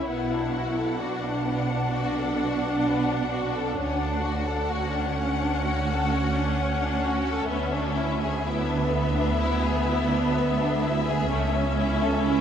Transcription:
0.00 0.11 C#3 medium
0.00 0.11 C#4 medium
0.00 0.98 E4 medium
0.00 0.10 E5 medium
0.10 3.79 B1 medium
0.10 3.79 B2 medium
0.10 0.31 B3 medium
0.10 3.78 F#5 medium
0.33 0.56 D4 medium
0.54 0.78 F#4 medium
0.78 1.02 A4 medium
1.00 4.73 D4 medium
1.00 1.25 F#4 medium
1.24 1.48 D4 medium
1.47 1.72 B3 medium
1.69 1.95 D4 medium
1.93 2.17 F#4 medium
2.19 2.44 A4 medium
2.43 2.68 F#4 medium
2.65 2.90 D4 medium
2.89 3.14 B3 medium
3.13 3.37 D4 medium
3.34 3.58 F#4 medium
3.57 3.81 A4 medium
3.79 7.45 D2 medium
3.79 7.46 D2 medium
3.79 4.01 C#4 medium
3.79 7.45 F#5 medium
4.00 4.25 D4 medium
4.22 4.48 F#4 medium
4.46 4.71 A4 medium
4.69 8.43 C#4 medium
4.69 4.94 F#4 medium
4.93 5.18 D4 medium
5.17 5.42 C#4 medium
5.42 5.66 D4 medium
5.65 5.88 F#4 medium
5.91 6.14 A4 medium
6.12 6.36 F#4 medium
6.36 6.59 D4 medium
6.61 6.83 C#4 medium
6.83 7.05 D4 medium
7.05 7.27 F#4 medium
7.29 7.51 A4 medium
7.48 11.26 D2 medium
7.48 11.26 D2 loud
7.48 7.71 B3 medium
7.48 12.41 E5 medium
7.72 7.96 D4 medium
7.96 8.20 E4 medium
8.23 8.45 G#4 medium
8.42 11.29 B3 loud
8.46 8.68 E4 medium
8.68 8.91 D4 medium
8.91 9.15 B3 medium
9.15 9.39 D4 medium
9.39 9.62 E4 medium
9.63 9.87 G#4 medium
9.87 10.11 E4 medium
10.11 10.35 D4 medium
10.37 10.60 B3 medium
10.60 10.83 D4 medium
10.83 11.06 E4 medium
11.07 11.31 G#4 medium
11.29 12.41 C#2 loud
11.29 12.41 C#2 medium
11.29 11.53 A3 medium
11.29 12.41 C#4 medium
11.55 11.78 C#4 medium
11.79 12.02 E4 medium
12.02 12.25 A4 medium
12.26 12.41 E4 medium

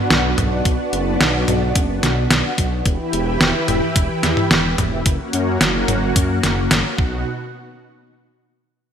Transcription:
0.00 2.82 B3 medium
0.00 2.82 D4 medium
0.00 2.82 F#4 medium
0.10 0.35 B1 medium
0.10 snare loud
0.10 closed hi-hat medium
0.38 0.62 B1 loud
0.38 kick medium
0.38 closed hi-hat medium
0.38 mid tom loud
0.65 0.78 B1 medium
0.65 kick loud
0.65 closed hi-hat medium
0.93 1.17 F#1 loud
0.93 closed hi-hat medium
1.21 1.45 B1 medium
1.21 snare loud
1.21 closed hi-hat medium
1.48 1.73 B1 medium
1.48 closed hi-hat medium
1.48 mid tom medium
1.75 2.00 F#1 loud
1.75 kick loud
1.75 closed hi-hat medium
2.03 2.27 B1 loud
2.03 snare medium
2.03 closed hi-hat medium
2.31 2.43 B1 medium
2.31 snare loud
2.31 closed hi-hat medium
2.58 2.82 B1 medium
2.58 kick loud
2.58 closed hi-hat medium
2.86 2.98 E1 loud
2.86 5.04 E3 medium
2.86 5.04 E4 medium
2.86 5.04 G4 medium
2.86 5.04 B4 loud
2.86 kick loud
2.86 closed hi-hat medium
3.13 3.38 E1 medium
3.13 closed hi-hat medium
3.41 3.53 E1 medium
3.41 snare loud
3.41 closed hi-hat medium
3.68 3.81 E1 medium
3.68 closed hi-hat medium
3.68 mid tom medium
3.96 4.08 E1 medium
3.96 kick loud
3.96 closed hi-hat medium
4.23 4.36 E2 medium
4.23 snare medium
4.23 closed hi-hat medium
4.37 mid tom medium
4.51 4.75 E1 loud
4.51 snare loud
4.51 closed hi-hat medium
4.78 5.03 E1 loud
4.78 kick medium
4.78 closed hi-hat medium
4.78 mid tom medium
5.05 5.18 F#1 medium
5.05 6.96 A#3 medium
5.05 6.96 C#4 medium
5.05 6.96 F#4 medium
5.05 kick loud
5.05 closed hi-hat medium
5.33 5.58 F#2 loud
5.33 closed hi-hat medium
5.61 5.85 F#1 medium
5.61 snare loud
5.61 closed hi-hat medium
5.88 6.13 F#1 medium
5.88 closed hi-hat medium
5.88 mid tom medium
6.16 6.40 F#2 loud
6.16 kick loud
6.16 closed hi-hat loud
6.43 6.68 F#1 loud
6.43 snare medium
6.43 closed hi-hat medium
6.71 6.83 F#1 loud
6.71 snare loud
6.71 closed hi-hat medium
6.98 7.24 B1 loud
6.98 7.24 B2 medium
6.98 7.24 B3 medium
6.98 7.24 D#4 medium
6.98 7.24 F#4 medium
6.98 kick loud

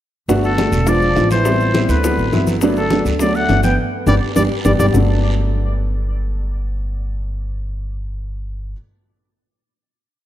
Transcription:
0.28 0.69 G1 medium
0.28 0.49 A3 loud
0.28 0.50 B3 medium
0.28 0.50 D4 medium
0.28 0.50 F#4 loud
0.28 high bongo medium
0.28 high conga soft
0.28 long guiro medium
0.28 maracas medium
0.44 0.90 D3 medium
0.44 0.90 A4 loud
0.44 high bongo soft
0.44 high conga soft
0.44 maracas soft
0.58 0.79 A3 medium
0.58 0.79 B3 medium
0.58 0.79 D4 medium
0.58 0.79 F#4 medium
0.58 high bongo medium
0.58 high conga medium
0.58 short guiro medium
0.58 maracas soft
0.72 1.13 E1 medium
0.72 high bongo soft
0.72 high conga soft
0.72 short guiro medium
0.72 maracas medium
0.86 1.31 F3 medium
0.86 1.07 G#3 medium
0.86 1.07 B3 medium
0.86 1.07 D4 medium
0.86 1.07 F4 medium
0.86 1.32 D5 loud
0.86 high bongo medium
0.86 high conga soft
0.86 long guiro medium
0.86 maracas medium
1.02 high conga soft
1.02 maracas soft
1.16 1.83 A1 medium
1.16 1.37 G#3 medium
1.16 1.37 B3 medium
1.16 1.37 D4 medium
1.16 1.37 F4 medium
1.16 high bongo soft
1.16 low bongo medium
1.16 high conga medium
1.16 short guiro medium
1.16 maracas soft
1.31 1.92 E3 medium
1.31 1.92 C5 medium
1.31 high bongo soft
1.31 high conga medium
1.31 short guiro medium
1.31 maracas medium
1.45 1.66 G3 medium
1.45 1.66 B3 medium
1.45 1.66 C4 medium
1.45 1.66 E4 loud
1.45 high bongo medium
1.45 long guiro medium
1.45 maracas medium
1.60 high bongo soft
1.60 high conga soft
1.60 maracas soft
1.74 1.95 G3 medium
1.74 1.95 B3 medium
1.74 1.95 C4 medium
1.74 1.95 E4 medium
1.74 high bongo medium
1.74 high conga medium
1.74 short guiro medium
1.74 maracas soft
1.89 2.16 D2 medium
1.89 2.48 D3 medium
1.89 2.48 B4 medium
1.89 high bongo soft
1.89 short guiro medium
1.89 maracas medium
2.04 2.24 F#3 medium
2.04 2.24 B3 medium
2.04 2.24 C4 medium
2.04 2.24 E4 medium
2.04 high bongo medium
2.04 high conga soft
2.04 long guiro medium
2.04 maracas medium
2.17 2.31 A1 medium
2.17 high conga soft
2.17 maracas soft
2.32 3.00 G1 medium
2.32 2.53 F#3 medium
2.32 2.53 B3 medium
2.32 2.53 C4 medium
2.32 2.53 E4 loud
2.32 high bongo soft
2.32 low bongo medium
2.32 high conga medium
2.32 short guiro medium
2.32 maracas soft
2.47 high bongo soft
2.47 high conga medium
2.47 short guiro medium
2.47 maracas medium
2.61 2.82 F#3 loud
2.61 2.83 A3 medium
2.61 2.83 B3 medium
2.61 2.83 D4 loud
2.61 high bongo medium
2.61 high conga soft
2.61 long guiro medium
2.61 maracas medium
2.76 3.04 D3 medium
2.76 3.04 A4 medium
2.76 high bongo soft
2.76 high conga soft
2.76 maracas soft
2.90 3.11 F#3 medium
2.90 3.11 A3 medium
2.90 3.11 B3 medium
2.90 3.12 D4 medium
2.90 high bongo medium
2.90 high conga medium
2.90 short guiro medium
2.90 maracas soft
3.05 3.46 D2 medium
3.05 high bongo soft
3.05 high conga soft
3.05 short guiro medium
3.05 maracas medium
3.19 3.37 F#3 medium
3.19 3.41 F#3 medium
3.19 3.41 A3 medium
3.19 3.41 B3 medium
3.19 3.41 D4 medium
3.19 3.37 D5 loud
3.19 high bongo medium
3.19 high conga soft
3.19 long guiro medium
3.19 maracas medium
3.35 3.63 A3 medium
3.35 3.63 F#5 loud
3.35 high conga soft
3.35 maracas soft
3.49 3.76 G1 medium
3.49 3.70 F#3 medium
3.49 3.70 A3 medium
3.49 3.70 B3 medium
3.49 3.70 D4 medium
3.49 high bongo soft
3.49 low bongo medium
3.49 high conga medium
3.49 short guiro medium
3.49 maracas soft
3.63 3.77 B3 medium
3.63 3.77 G5 loud
3.63 high bongo soft
3.63 high conga medium
3.63 short guiro medium
3.63 maracas medium
4.06 4.18 G1 loud
4.06 4.14 G3 medium
4.06 4.17 G3 medium
4.06 4.17 B3 medium
4.06 4.16 D4 medium
4.06 4.15 D5 loud
4.06 low bongo medium
4.06 high conga loud
4.06 long guiro loud
4.06 maracas medium
4.36 4.47 G1 medium
4.36 4.45 G3 medium
4.36 4.43 G3 medium
4.36 4.45 B3 medium
4.36 4.46 D4 medium
4.36 4.43 D5 medium
4.36 low bongo loud
4.36 high conga medium
4.36 long guiro loud
4.36 maracas loud
4.65 4.76 G1 medium
4.65 4.74 G3 medium
4.65 4.73 G3 medium
4.65 4.74 B3 medium
4.65 4.74 D4 medium
4.65 4.72 D5 medium
4.65 low bongo loud
4.65 high conga medium
4.65 long guiro medium
4.65 maracas loud
4.79 4.90 G1 medium
4.79 4.89 G3 medium
4.79 4.87 G3 medium
4.79 4.89 B3 medium
4.79 4.89 D4 medium
4.79 4.87 D5 medium
4.79 low bongo loud
4.79 high conga medium
4.79 long guiro loud
4.79 maracas loud
4.93 8.72 G1 medium
4.93 8.71 F#3 medium
4.93 8.72 A3 medium
4.93 8.73 B3 medium
4.93 8.73 D4 medium
4.93 low bongo medium
4.93 low conga medium
4.93 long guiro medium
4.93 maracas medium

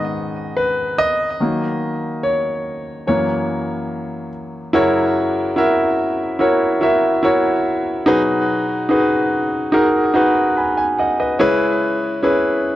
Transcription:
0.00 1.42 G#2 soft
0.00 1.40 D#3 soft
0.00 1.42 B3 soft
0.00 0.53 D#5 medium
0.00 1.42 F#5 medium
0.56 1.00 B4 medium
0.98 2.20 D#5 medium
1.40 3.03 D#3 soft
1.40 3.03 F#3 soft
1.40 3.04 A#3 soft
2.23 3.06 C#5 medium
3.07 4.28 F#2 soft
3.07 4.29 E3 soft
3.07 4.29 A#3 soft
3.07 4.28 C#5 medium
4.73 8.03 F#2 medium
4.73 8.03 C#3 medium
4.73 5.53 E4 medium
4.73 5.53 F#4 medium
4.73 5.53 A#4 medium
4.73 5.54 C#5 loud
5.56 6.36 E4 medium
5.56 6.36 F#4 medium
5.56 6.37 A#4 medium
5.56 6.37 E5 medium
6.39 6.79 E4 medium
6.39 6.80 F#4 medium
6.39 6.80 A#4 medium
6.39 6.80 C#5 medium
6.81 7.21 E4 medium
6.81 7.21 F#4 medium
6.81 7.22 A#4 medium
6.81 7.22 E5 medium
7.22 8.02 E4 medium
7.22 8.03 F#4 medium
7.22 8.03 A#4 medium
7.22 8.03 C#5 medium
8.06 11.36 B2 medium
8.06 11.36 F#3 medium
8.06 8.86 D#4 medium
8.06 8.86 F#4 medium
8.06 8.86 G#4 medium
8.06 8.87 B4 loud
8.89 9.69 D#4 medium
8.89 9.69 F#4 medium
8.89 9.70 G#4 medium
8.89 9.70 B4 medium
9.72 10.13 D#4 medium
9.72 10.13 F#4 medium
9.72 10.13 G#4 medium
9.72 10.14 A#4 medium
10.14 10.54 D#4 medium
10.14 10.55 F#4 medium
10.14 10.55 G#4 medium
10.14 10.55 B4 medium
10.57 10.76 G#5 soft
10.57 10.77 B5 medium
10.78 10.98 G#5 medium
10.99 11.18 D#5 medium
10.99 11.18 F#5 medium
11.20 11.39 B4 soft
11.20 11.59 D#5 medium
11.39 12.76 C#3 medium
11.39 12.76 G#3 medium
11.39 12.19 C#4 medium
11.39 12.19 E4 medium
11.39 12.19 G#4 medium
11.39 12.20 B4 loud
12.22 12.76 C#4 medium
12.22 12.76 E4 medium
12.22 12.76 G#4 medium
12.22 12.76 B4 medium

